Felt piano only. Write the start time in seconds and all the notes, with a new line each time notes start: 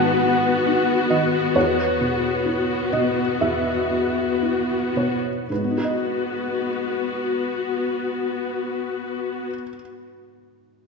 Already playing: G#2 D#3 D#4 F#5 G#5
0.24 B3
0.66 D#4
1.10 D#3 D#5
1.55 E2 C#5
2.01 B2
2.45 E4
2.93 B2 D#5
3.40 E2 E5
3.90 B3
4.42 E4
4.96 B2 C#5
5.50 G#2 B4
5.57 G#3
5.64 B3
5.71 D#4
5.78 F#4
5.85 D#5